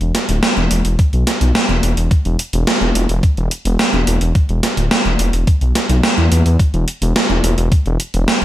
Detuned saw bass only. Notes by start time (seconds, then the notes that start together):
0.01 E1
0.29 D1
0.57 E1
0.71 E1
0.85 E1
1.13 B1
1.41 B1
1.69 E1
1.83 E1
1.97 E1
2.25 E1
2.53 E1
2.81 E1
2.95 E1
3.09 E1
3.37 E1
3.65 E1
3.93 E1
4.07 E1
4.21 E1
4.49 E1
4.77 D1
5.05 E1
5.19 E1
5.33 E1
5.61 B1
5.89 B1
6.18 E2
6.31 E2
6.45 E2
6.73 E1
7.02 E1
7.30 E1
7.44 E1
7.58 E1
7.86 E1
8.14 E1